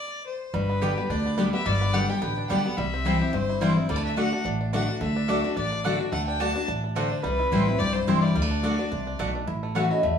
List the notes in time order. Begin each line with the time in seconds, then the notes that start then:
Already playing: D5
0.26 C5
0.54 G1 G2 G3 B4
0.69 B3
0.81 D3 G3 B3 D4 G4 D5 G5
0.97 B3 G4
1.09 D2 D3 D4 D5
1.26 B3
1.38 D3 G3 B3 G4 D5 G5
1.53 B3 G4 E5
1.66 G1 G2 G3 D5
1.81 B3
1.93 D3 G3 B3 D4 G4 D5 F#5 G5
2.09 B3 G4 G5
2.22 A1 D3 B3
2.37 D4
2.49 B1 D3 G3 B3 G4 D5 F#5 G5
2.65 B3 G4
2.77 C2 C3 G3 E5
2.94 C4
3.05 E3 G3 C4 E4 C5 G5
3.20 C4 E4 G4
3.33 G1 G2 C4 C5
3.49 E4
3.61 E3 G3 C4 E4 C5 G5
3.76 C4 E4
3.89 D2 D3 G3 D5
3.96 A3
4.05 D4 E5
4.16 D3 A3 D4 F#4 D5 F#5
4.32 D4 F#4
4.45 A1 A2 D4
4.61 D4
4.73 D3 A3 D4 F#4 D5 F#5
4.88 D4 F#4
5.00 D2 D3 A3 E5
5.16 D4
5.28 D3 A3 D4 F#4 D5 F#5
5.44 D4 F#4
5.56 A1 A2 D4 D5
5.72 D4
5.84 D3 A3 D4 F#4 D5 F#5
6.00 D4 F#4
6.12 D2 D3 A3 F#5
6.27 D4 G5
6.40 D3 A3 D4 F#4 D5 F#5 A5
6.55 D4 F#4
6.68 A1 A2 D4
6.84 D4
6.96 D3 A3 F#4 C5 D5 F#5
7.12 D4
7.23 C2 C3 G3 B4
7.39 E4
7.52 A1 E3 G3 C4 E4 C5 G5
7.67 C4 E4
7.79 B1 G2 G4 D5
7.93 E4 C5
8.07 C2 E3 G3 C4 E4 G4 C5 G5
8.22 E4 D5
8.35 D2 D3 G3
8.42 A3
8.51 D4
8.63 D3 A3 D4 F#4 D5 F#5
8.78 D4 F#4
8.92 C2 C3 D4
9.07 D4
9.19 B1 B2 A3 F#4 D5 F#5
9.35 D4
9.47 A1 A2 E4
9.63 A3
9.75 E3 A3 C#4 F#4 C#5 F#5
9.91 C#4 E4 F#4 D#5
10.03 E2 A3 E5